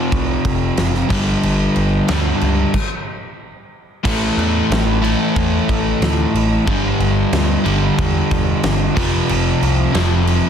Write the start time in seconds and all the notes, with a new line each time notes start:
Already playing: F2 C3 F3
0.12 C2, kick, crash
0.45 F1, kick, crash
0.77 F#1, snare, crash
0.95 snare
1.09 G1 G2 D3 G3, kick, crash
1.43 G1, crash
1.76 G1, crash
2.08 D2 G2 D3 G3, snare, crash
2.41 C#2, crash
2.74 kick, crash
4.03 A1 A2 E3 A3, kick, crash
4.38 E2, crash
4.70 A1, snare, crash
5.02 A2 E3 A3, crash
5.36 E2, kick, crash
5.69 A1, kick, crash
6.02 D2, snare, crash
6.35 A1, crash
6.66 G1 G2 D3 G3, kick, crash
7.00 G1, crash
7.33 D2, snare, crash
7.64 G1 G2 D3 G3, crash
7.98 E2, kick, crash
8.31 E1, kick, crash
8.63 G1, snare, crash
8.95 F1 F2 C3 F3, kick, crash
9.29 F1, crash
9.62 C2, crash
9.93 F1 F2 C3 F3, snare, crash
10.27 crash